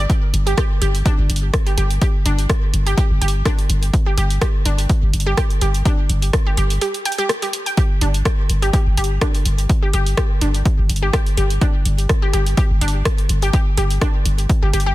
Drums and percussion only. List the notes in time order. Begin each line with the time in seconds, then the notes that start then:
0.10 kick, closed hi-hat
0.34 closed hi-hat
0.47 closed hi-hat
0.58 kick, cross-stick, closed hi-hat
0.82 closed hi-hat
0.95 closed hi-hat
1.06 kick, closed hi-hat
1.30 closed hi-hat
1.36 closed hi-hat
1.54 kick, cross-stick, closed hi-hat
1.67 closed hi-hat
1.78 closed hi-hat
1.90 closed hi-hat
2.02 kick, closed hi-hat
2.26 closed hi-hat
2.39 closed hi-hat
2.50 kick, cross-stick, closed hi-hat
2.74 closed hi-hat
2.87 closed hi-hat
2.98 kick, closed hi-hat
3.22 closed hi-hat
3.28 closed hi-hat
3.46 kick, cross-stick, closed hi-hat
3.59 closed hi-hat
3.70 closed hi-hat
3.83 closed hi-hat
3.94 kick, closed hi-hat
4.18 closed hi-hat
4.30 closed hi-hat
4.42 kick, cross-stick, closed hi-hat
4.66 closed hi-hat
4.78 closed hi-hat
4.89 kick, closed hi-hat
5.13 closed hi-hat
5.20 closed hi-hat
5.38 kick, cross-stick, closed hi-hat
5.50 closed hi-hat
5.61 closed hi-hat
5.74 closed hi-hat
5.85 kick, closed hi-hat
6.09 closed hi-hat
6.22 closed hi-hat
6.33 kick, cross-stick, closed hi-hat
6.57 closed hi-hat
6.70 closed hi-hat
6.81 closed hi-hat
6.94 closed hi-hat
7.05 closed hi-hat
7.12 closed hi-hat
7.18 closed hi-hat
7.29 cross-stick, closed hi-hat
7.42 closed hi-hat
7.53 closed hi-hat
7.66 closed hi-hat
7.77 kick, closed hi-hat
8.01 closed hi-hat
8.14 closed hi-hat
8.25 kick, cross-stick, closed hi-hat
8.50 closed hi-hat
8.62 closed hi-hat
8.73 kick, closed hi-hat
8.97 closed hi-hat
9.04 closed hi-hat
9.21 kick, cross-stick, closed hi-hat
9.35 closed hi-hat
9.46 closed hi-hat
9.58 closed hi-hat
9.69 kick, closed hi-hat
9.93 closed hi-hat
10.06 closed hi-hat
10.17 kick, cross-stick, closed hi-hat
10.41 closed hi-hat
10.54 closed hi-hat
10.65 kick, closed hi-hat
10.89 closed hi-hat
10.96 closed hi-hat
11.13 kick, cross-stick, closed hi-hat
11.26 closed hi-hat
11.37 closed hi-hat
11.50 closed hi-hat
11.61 kick, closed hi-hat
11.85 closed hi-hat
11.98 closed hi-hat
12.09 kick, cross-stick, closed hi-hat
12.33 closed hi-hat
12.46 closed hi-hat
12.57 kick, closed hi-hat
12.81 closed hi-hat
12.88 closed hi-hat
13.05 kick, cross-stick, closed hi-hat
13.18 closed hi-hat
13.29 closed hi-hat
13.42 closed hi-hat
13.53 kick, closed hi-hat
13.77 closed hi-hat
13.90 closed hi-hat
14.01 kick, cross-stick, closed hi-hat
14.26 closed hi-hat
14.38 closed hi-hat
14.49 kick, closed hi-hat
14.74 closed hi-hat
14.80 closed hi-hat